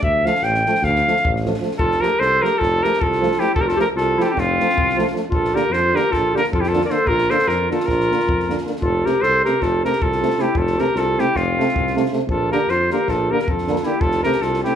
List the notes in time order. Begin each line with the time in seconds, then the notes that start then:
0.02 D2 E5, kick
0.25 F3 A3 F5, snare
0.35 snare
0.42 A1 G5, snare
0.54 snare
0.66 F3 A3, snare
0.75 snare
0.82 D2 F5, kick, snare
0.95 snare
1.07 F3 A3, snare
1.16 snare
1.24 A1, kick
1.36 snare
1.45 F3 A3, snare
1.54 snare
1.60 F3 A3, snare
1.71 snare
1.77 F1 F4 A4, kick
1.91 snare
2.00 F3 A3 G4 A#4, snare
2.19 C2 A4 C5, snare
2.41 F3 A3 G4 A#4, snare
2.58 F1 F4 A4, kick
2.62 snare
2.83 F3 A3 G4 A#4, snare
2.93 snare
3.01 C2 F4 A4, kick
3.12 snare
3.21 F3 A3, snare
3.31 snare
3.38 F3 A3 E4 G4, snare
3.54 F1 F4 A4, kick
3.60 G4 A#4
3.67 F4 A4, snare
3.77 F3 A3 G4 A#4, snare
3.95 C2 F4 A4, snare
4.17 F3 A3 E4 F4 G4, snare
4.24 E4 A4
4.30 C4 G4
4.36 F1 F4, kick, snare
4.60 F3 A3, snare
4.69 snare
4.75 C2, kick
4.89 snare
4.97 F3 A3, snare
5.07 snare
5.13 F3 A3, snare
5.30 A#1 F4 A4, kick
5.45 snare
5.54 D3 A#3 G4 A#4, snare
5.70 F2 F4 C5, snare
5.93 D3 A#3 G4 A#4, snare
6.11 A#1 F4 A4, kick, snare
6.34 D3 A#3 G4 A#4, snare
6.44 snare
6.52 F2 F4 A4, kick
6.60 E4 G4, snare
6.68 F4 A4
6.73 D3 A#3, snare
6.81 D5, snare
6.86 D3 A#4
6.90 A#3 A4 C5, snare
7.05 A#1 F4 A#4, kick
7.18 snare
7.30 D3 A#3 A4 C5, snare
7.39 snare
7.47 F2 F4 A#4, snare
7.70 D3 A#3 F4 A4, snare
7.80 snare
7.86 A#1 F4 A#4, kick, snare
8.00 snare
8.11 D3 A#3, snare
8.20 snare
8.27 F2, kick
8.40 snare
8.48 D3 A#3, snare
8.58 snare
8.65 D3 A#3, snare
8.76 snare
8.81 F1 F4 A4, kick
9.05 C3 A3 G4 A#4, snare
9.21 C2 A4 C5, snare
9.45 C3 A3 G4 A#4, snare
9.61 F1 F4 A4, kick, snare
9.84 C3 A3 G4 A#4, snare
9.93 snare
10.01 C2 F4 A4, kick
10.12 snare
10.20 C3 A3, snare
10.30 snare
10.38 C3 A3 E4 G4, snare
10.55 F1 F4 A4, kick
10.67 snare
10.77 C3 A3 G4 A#4, snare
10.95 C2 F4 A4, snare
11.18 C3 A3 E4 G4, snare
11.35 F1 C4 F4, kick, snare
11.58 C3 A3, snare
11.68 snare
11.74 C2, kick
11.87 snare
11.95 C3 A3, snare
12.05 snare
12.12 C3 A3, snare
12.27 A#1 F4 A4, kick
12.51 D3 A#3 G4 A#4, snare
12.66 F2 C5, snare
12.71 F4
12.90 D3 A#3 G4 A#4, snare
13.07 A#1 F4 A4, kick, snare
13.31 D3 A#3 G4 A#4
13.39 G4 A#4, snare
13.47 F2 F4 A4, kick
13.58 snare
13.67 D3 A#3, snare
13.76 snare
13.83 D3 A#3 E4 G4, snare
14.00 F1 F4 A4, kick
14.11 snare
14.23 C3 A3 G4 A#4, snare
14.32 snare
14.41 C2 F4 A4, snare
14.54 snare
14.63 C3 A3 E4 G4, snare